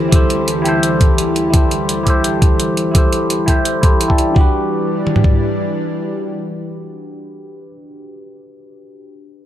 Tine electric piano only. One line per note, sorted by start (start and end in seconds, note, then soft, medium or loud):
0.00 0.09 E4 medium
0.00 0.11 G4 medium
0.00 0.14 A4 medium
0.00 0.16 C5 medium
0.09 0.61 E4 medium
0.09 0.63 G4 medium
0.14 0.64 A4 medium
0.14 0.65 C5 medium
0.62 1.33 E4 medium
0.62 1.34 G4 medium
0.66 1.35 A4 medium
0.66 1.36 C5 medium
1.50 2.02 E4 medium
1.50 2.04 G4 medium
1.55 2.05 A4 medium
1.55 2.06 C5 medium
2.03 2.74 E4 medium
2.03 2.75 G4 medium
2.08 2.76 A4 medium
2.08 2.77 C5 medium
2.91 3.44 E4 medium
2.91 3.45 G4 medium
2.96 3.46 A4 medium
2.96 3.47 C5 medium
3.46 3.80 E4 medium
3.46 3.81 G4 medium
3.46 3.82 A4 medium
3.46 3.82 C5 medium
3.81 4.07 E4 medium
3.81 4.07 G4 medium
3.81 4.08 A4 medium
3.81 4.08 C5 medium
4.08 4.18 E4 medium
4.08 4.19 G4 medium
4.08 4.19 A4 medium
4.08 4.20 D5 medium
4.31 7.60 D4 medium
4.31 7.63 F#4 medium
4.38 7.67 G4 medium
4.38 7.70 B4 medium